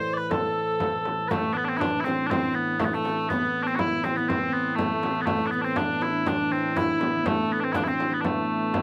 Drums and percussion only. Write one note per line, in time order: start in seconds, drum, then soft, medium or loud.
0.31 frame drum medium
0.56 frame drum soft
0.80 frame drum medium
1.05 frame drum medium
1.31 frame drum medium
1.81 frame drum medium
2.06 frame drum medium
2.31 frame drum medium
2.79 frame drum medium
3.05 frame drum medium
3.30 frame drum medium
3.79 frame drum medium
4.04 frame drum medium
4.30 frame drum medium
4.79 frame drum medium
5.03 frame drum medium
5.27 frame drum medium
5.76 frame drum medium
6.02 frame drum medium
6.26 frame drum medium
6.77 frame drum loud
7.01 frame drum medium
7.26 frame drum loud
7.74 frame drum loud
8.00 frame drum medium
8.24 frame drum medium
8.74 frame drum medium